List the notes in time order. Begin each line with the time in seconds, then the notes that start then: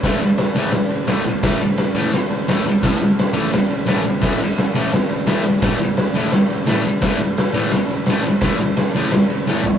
0.03 A2 E3 A3, kick, snare, ride
0.21 ride
0.38 snare, ride
0.55 A2 E3 A3, ride
0.72 snare, ride
0.90 ride
1.07 A2 E3 A3, snare, ride
1.25 ride
1.43 A2 E3 A3, kick, snare, ride
1.61 ride
1.78 snare, ride
1.94 A2 E3 A3, ride
2.13 snare, ride
2.31 ride
2.48 A2 E3 A3, snare, ride
2.67 ride
2.83 A2 E3 A3, kick, snare, ride
3.01 ride
3.19 snare, ride
3.33 A2 E3 A3, ride
3.53 snare, ride
3.71 ride
3.86 A2 E3 A3, snare, ride
4.06 ride
4.21 A2 E3 A3, kick, snare, crash
4.40 ride
4.58 snare, ride
4.75 A2 E3 A3, ride
4.93 snare, ride
5.09 ride
5.27 A2 E3 A3, snare, ride
5.44 ride
5.62 A2 E3 A3, kick, snare, ride
5.79 ride
5.97 snare, ride
6.14 A2 E3 A3, ride
6.31 snare, ride
6.50 ride
6.67 A2 E3 A3, snare, ride
6.85 ride
7.01 A2 E3 A3, kick, snare, ride
7.19 ride
7.38 snare, ride
7.54 A2 E3 A3, ride
7.71 snare, ride
7.88 ride
8.06 A2 E3, snare, ride
8.10 A3
8.23 ride
8.41 A2 E3 A3, kick, snare, ride
8.58 ride
8.77 snare, ride
8.94 A2 E3 A3, ride
9.11 snare, ride
9.30 ride
9.47 A2 E3 A3, snare
9.64 floor tom